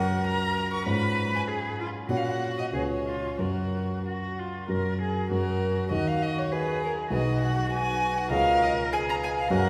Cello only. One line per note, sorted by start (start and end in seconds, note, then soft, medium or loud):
0.00 0.86 A#4 medium
0.86 1.49 B4 medium
1.48 1.79 G#4 soft
1.80 1.88 F4 soft
2.11 2.73 F#4 soft
2.74 2.82 G#4 soft
3.07 3.39 F4 soft
3.39 3.98 F#4 soft
4.06 4.41 F#4 soft
4.39 4.70 F4 soft
4.70 4.99 A#4 soft
5.02 5.31 G#4 soft
5.32 5.91 F#4 soft
5.92 6.54 F#4 soft
6.52 7.12 G#4 soft
7.13 8.30 F#4 medium
8.32 8.95 A#4 medium
8.93 9.52 G#4 medium
9.52 9.70 A#4 medium